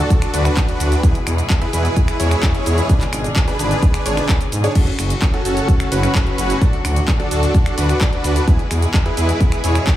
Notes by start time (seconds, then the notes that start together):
Already playing: A2 D3 F#3 D4 F#4 A4
0.10 D2, kick, closed hi-hat, shaker
0.22 finger snap, closed hi-hat, shaker
0.34 D2 D4 F#4 B4, open hi-hat, shaker
0.45 finger snap, closed hi-hat, shaker
0.57 D2, kick, clap, closed hi-hat, shaker
0.69 closed hi-hat
0.80 D2, open hi-hat, shaker
0.92 closed hi-hat, shaker
1.03 E2 B2 E3 G#3 E4 G#4 B4, kick, closed hi-hat, shaker
1.15 closed hi-hat
1.27 E2, finger snap, open hi-hat, shaker
1.38 closed hi-hat, shaker
1.50 E2, kick, clap, closed hi-hat, shaker
1.62 E4 G#4 B4, closed hi-hat
1.73 E2 E4 G#4 B4, open hi-hat, shaker
1.85 closed hi-hat, shaker
1.96 E2, kick, closed hi-hat, shaker
2.08 finger snap, closed hi-hat, shaker
2.20 E2 E4 G#4 C#5, open hi-hat, shaker
2.31 finger snap, closed hi-hat, shaker
2.43 E2, kick, clap, closed hi-hat, shaker
2.55 closed hi-hat
2.66 E2, open hi-hat, shaker
2.78 closed hi-hat, shaker
2.89 G#1 D3 D4 G#4 B4, kick, closed hi-hat, shaker
3.01 clap, closed hi-hat, shaker
3.13 G#1, finger snap, open hi-hat, shaker
3.24 closed hi-hat, shaker
3.36 G#1, kick, clap, closed hi-hat, shaker
3.48 D4 G#4 B4, closed hi-hat, shaker
3.59 G#1 D4 G#4 B4, open hi-hat, shaker
3.71 closed hi-hat, shaker
3.83 G#1, kick, closed hi-hat, shaker
3.94 finger snap, closed hi-hat, shaker
4.06 G#1 D4 G#4 C#5, open hi-hat, shaker
4.17 D4 G#4 B4, finger snap, closed hi-hat, shaker
4.29 D2, kick, clap, closed hi-hat, shaker
4.41 closed hi-hat, shaker
4.52 G#2, open hi-hat, shaker
4.64 D4 G#4 C#5, closed hi-hat, shaker
4.75 F#1 A2 C#3 F#3 C#4 F#4, kick, closed hi-hat, crash, shaker
4.87 closed hi-hat
4.99 F#1, finger snap, open hi-hat, ride, shaker
5.10 closed hi-hat, shaker
5.22 F#1, kick, clap, closed hi-hat, shaker
5.34 C#4 F#4 A4, closed hi-hat
5.45 F#1 C#4 F#4 A4, open hi-hat, ride, shaker
5.57 closed hi-hat, shaker
5.68 F#1, kick, closed hi-hat, shaker
5.80 finger snap, closed hi-hat, shaker
5.92 F#1 C#4 F#4 B4, open hi-hat, ride, shaker
6.03 finger snap, closed hi-hat, shaker
6.15 F#1, kick, clap, closed hi-hat, shaker
6.27 closed hi-hat
6.38 F#1, open hi-hat, ride, shaker
6.50 closed hi-hat, shaker
6.61 D2 D3 D4 F#4 A4, kick, closed hi-hat, shaker
6.73 closed hi-hat
6.85 D2, finger snap, open hi-hat, ride, shaker
6.96 closed hi-hat, shaker
7.08 D2, kick, clap, closed hi-hat, shaker
7.20 D4 F#4 A4, closed hi-hat
7.31 D2 D4 F#4 A4, open hi-hat, ride, shaker
7.43 closed hi-hat, shaker
7.54 D2, kick, closed hi-hat, shaker
7.66 finger snap, closed hi-hat, shaker
7.78 D2 D4 F#4 B4, open hi-hat, ride, shaker
7.89 finger snap, closed hi-hat, shaker
8.01 D2, kick, clap, closed hi-hat, shaker
8.13 closed hi-hat
8.24 D2, open hi-hat, ride, shaker
8.36 closed hi-hat, shaker
8.48 E2 B2 E3 G#3 E4 G#4 B4, kick, closed hi-hat, shaker
8.59 closed hi-hat
8.71 E2, finger snap, open hi-hat, ride, shaker
8.82 closed hi-hat, shaker
8.94 E2, kick, clap, closed hi-hat, shaker
9.06 E4 G#4 B4, closed hi-hat
9.17 E2 E4 G#4 B4, open hi-hat, ride, shaker
9.29 closed hi-hat, shaker
9.41 E2, kick, closed hi-hat, shaker
9.52 finger snap, closed hi-hat, shaker
9.64 E2 E4 G#4 C#5, open hi-hat, ride, shaker
9.75 finger snap, closed hi-hat, shaker
9.87 E2, kick, clap, closed hi-hat, shaker